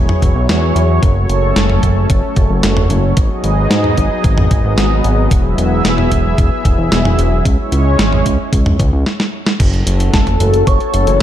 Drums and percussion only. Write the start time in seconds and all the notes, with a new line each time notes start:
0.09 mid tom
0.22 kick, closed hi-hat
0.49 snare, closed hi-hat
0.76 closed hi-hat
1.03 kick, closed hi-hat
1.30 closed hi-hat
1.56 snare, closed hi-hat
1.70 mid tom
1.83 kick, closed hi-hat
2.10 kick, closed hi-hat
2.36 kick, closed hi-hat
2.63 snare, closed hi-hat
2.77 mid tom
2.90 closed hi-hat
3.17 kick, closed hi-hat
3.44 closed hi-hat
3.71 snare, closed hi-hat
3.84 mid tom
3.97 kick, closed hi-hat
4.24 kick, closed hi-hat
4.38 mid tom
4.51 kick, closed hi-hat
4.78 snare, closed hi-hat
5.04 closed hi-hat
5.31 kick, closed hi-hat
5.58 closed hi-hat
5.85 snare, closed hi-hat
5.98 mid tom
6.12 kick, closed hi-hat
6.38 kick, closed hi-hat
6.65 kick, closed hi-hat
6.92 snare, closed hi-hat
7.05 mid tom
7.19 closed hi-hat
7.45 kick, closed hi-hat
7.72 closed hi-hat
7.99 snare, closed hi-hat
8.13 mid tom
8.26 kick, closed hi-hat
8.53 kick, closed hi-hat
8.66 mid tom
8.79 kick, closed hi-hat
9.06 snare
9.20 snare
9.47 snare
9.60 kick, closed hi-hat, crash
9.74 closed hi-hat
9.87 closed hi-hat
10.00 closed hi-hat
10.14 kick, snare, closed hi-hat
10.27 closed hi-hat, mid tom
10.40 closed hi-hat
10.54 closed hi-hat
10.67 kick, closed hi-hat
10.80 closed hi-hat
10.94 closed hi-hat
11.07 closed hi-hat